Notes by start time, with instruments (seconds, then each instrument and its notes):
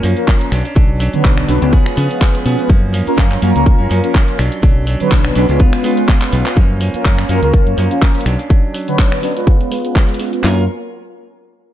Already playing: analog polysynth A#3 C#4 F4 A#4
0.03 fingered electric bass F#2, clean electric guitar F3 A#3 C#4, open hi-hat, shaker
0.17 analog polysynth A#3 C#4 F4 A#4, closed hi-hat, shaker
0.27 clean electric guitar F3 A#3 C#4, kick, clap, closed hi-hat, shaker
0.41 closed hi-hat
0.51 fingered electric bass B1, clean electric guitar F#3 C#4 D4, finger snap, open hi-hat, shaker
0.65 clean electric guitar C#4 D4, closed hi-hat, shaker
0.75 fingered electric bass B1, clean electric guitar F#3 C#4 D4, kick, closed hi-hat, shaker
1.00 clean electric guitar F#3 C#4 D4, open hi-hat, shaker
1.13 analog polysynth D3 F#3 B3 B4 C#5, clean electric guitar C#4 D4, muted fingered electric bass stroke, closed hi-hat, shaker
1.24 fingered electric bass B1, clean electric guitar F#3 C#4 D4, kick, clap, closed hi-hat, shaker
1.38 finger snap
1.48 fingered electric bass B1, analog polysynth F#3 B3 C#4 D4 B4, clean electric guitar F#3 C#4 D4, open hi-hat, shaker
1.61 fingered electric bass C#2, analog polysynth G#3 B3 C#4 F4 B4, clean electric guitar C#4 D4, closed hi-hat, shaker
1.72 clean electric guitar F3 B3 C#4 G#4, kick, closed hi-hat, shaker
1.85 clean electric guitar B3 C#4 G#4, finger snap, muted fingered electric bass stroke
1.96 fingered electric bass C#3, clean electric guitar F3 B3 C#4 G#4, open hi-hat, shaker
2.09 analog polysynth G#3 B3 C#4 F4 B4, closed hi-hat, shaker
2.21 clean electric guitar F3 B3 C#4 G#4, kick, clap, closed hi-hat, shaker
2.35 closed hi-hat
2.45 fingered electric bass B2, clean electric guitar F3 B3 C#4 G#4, open hi-hat, shaker
2.59 closed hi-hat, shaker
2.69 fingered electric bass F#2, clean electric guitar F3 A#3 C#4, kick, closed hi-hat, shaker
2.93 clean electric guitar F3 A#3 C#4, open hi-hat, shaker
3.06 analog polysynth A#3 C#4 F4 A#4, clean electric guitar A#3 C#4, muted fingered electric bass stroke, closed hi-hat, shaker
3.17 fingered electric bass F#2, clean electric guitar F3 A#3 C#4, kick, clap, closed hi-hat, shaker
3.32 clap
3.41 fingered electric bass F#2, clean electric guitar F3 A#3 C#4, analog polysynth F#3 A#3 C#4 F4 A#4, open hi-hat, shaker
3.54 fingered electric bass C#2, analog polysynth A#3 C#4 F4 A#4, clean electric guitar A#3 C#4, closed hi-hat, shaker
3.66 kick, closed hi-hat, shaker
3.78 fingered electric bass F#2, clean electric guitar A#3 C#4
3.90 fingered electric bass F#2, clean electric guitar F3 A#3 C#4, open hi-hat, shaker
4.03 analog polysynth A#3 C#4 F4 A#4, closed hi-hat, shaker
4.15 clean electric guitar A#3 C#4, kick, clap, closed hi-hat, shaker
4.28 closed hi-hat
4.38 fingered electric bass B1, clean electric guitar F#3 C#4 D4, finger snap, open hi-hat, shaker
4.52 closed hi-hat, shaker
4.62 fingered electric bass B1, clean electric guitar F#3 C#4 D4, kick, closed hi-hat, shaker
4.87 clean electric guitar F#3 C#4 D4, open hi-hat, shaker
5.00 analog polysynth D3 F#3 B3 B4 C#5, clean electric guitar C#4 D4, muted fingered electric bass stroke, closed hi-hat, shaker
5.11 fingered electric bass B1, clean electric guitar F#3 C#4 D4, kick, clap, closed hi-hat, shaker
5.25 finger snap
5.35 fingered electric bass B1, analog polysynth F#3 B3 C#4 D4 B4, clean electric guitar F#3 C#4 D4, open hi-hat, shaker
5.49 fingered electric bass C#2, analog polysynth G#3 B3 C#4 F4 B4, clean electric guitar C#4 D4, closed hi-hat, shaker
5.60 clean electric guitar G#3 B3 F4, kick, closed hi-hat, shaker
5.73 clean electric guitar B3 F4, finger snap, closed hi-hat
5.84 clean electric guitar G#3 B3 F4, analog polysynth G#3 B3 C#4 F4 B4, open hi-hat, shaker
5.97 closed hi-hat, shaker
6.08 clean electric guitar G#3 B3 F4, kick, clap, closed hi-hat, shaker
6.22 clap, closed hi-hat
6.32 fingered electric bass B1, clean electric guitar G#3 B3 F4, open hi-hat, shaker
6.45 clean electric guitar B3 F4, clap, closed hi-hat, shaker
6.56 fingered electric bass F#2, clean electric guitar F3 A#3 C#4, kick, closed hi-hat, shaker
6.80 clean electric guitar F3 A#3 C#4, open hi-hat, shaker
6.94 analog polysynth A#3 C#4 F4 A#4, muted fingered electric bass stroke, closed hi-hat, shaker
7.05 fingered electric bass F#2, clean electric guitar F3 A#3 C#4, kick, clap, closed hi-hat, shaker
7.18 clean electric guitar A#3 C#4, finger snap, clap
7.29 fingered electric bass F#2, clean electric guitar F3 A#3 C#4, analog polysynth F#3 A#3 C#4 F4 A#4, open hi-hat, shaker
7.42 fingered electric bass C#2, analog polysynth A#3 C#4 F4 A#4, clean electric guitar A#3 C#4, closed hi-hat, shaker
7.54 kick, closed hi-hat, shaker
7.67 fingered electric bass F#2, closed hi-hat
7.77 fingered electric bass F#2, clean electric guitar F3 A#3 C#4, open hi-hat, shaker
7.90 analog polysynth A#3 C#4 F4 A#4, closed hi-hat, shaker
8.01 clean electric guitar F3 A#3 C#4, kick, clap, closed hi-hat, shaker
8.15 closed hi-hat
8.21 closed hi-hat
8.26 fingered electric bass B1, clean electric guitar F#3 C#4 D4, finger snap, open hi-hat, shaker
8.39 clean electric guitar C#4 D4, closed hi-hat, shaker
8.50 clean electric guitar F#3 C#4 D4, kick, closed hi-hat, shaker
8.74 clean electric guitar F#3 C#4 D4, open hi-hat, shaker
8.87 analog polysynth D3 F#3 B3 B4 C#5, closed hi-hat, shaker
8.98 clean electric guitar F#3 C#4 D4, kick, clap, closed hi-hat, shaker
9.11 clean electric guitar C#4 D4, finger snap
9.22 analog polysynth F#3 B3 C#4 D4 B4, clean electric guitar F#3 C#4 D4, open hi-hat, shaker
9.36 analog polysynth G#3 B3 C#4 F4 B4, clean electric guitar C#4 D4, closed hi-hat, shaker
9.47 clean electric guitar G#3 B3 F4, kick, closed hi-hat, shaker
9.61 closed hi-hat
9.71 clean electric guitar G#3 B3 F4, open hi-hat, shaker
9.83 analog polysynth G#3 B3 C#4 F4 B4, closed hi-hat, shaker
9.95 clean electric guitar G#3 B3, kick, clap, closed hi-hat, shaker
10.09 closed hi-hat
10.14 closed hi-hat
10.19 clean electric guitar G#3 B3 F4, open hi-hat, shaker
10.32 clean electric guitar B3 F4, closed hi-hat, shaker
10.43 fingered electric bass F#2, analog polysynth F#3 A#3 C#4 F4 A#4, clean electric guitar C#4 F4 A#4, snare, clap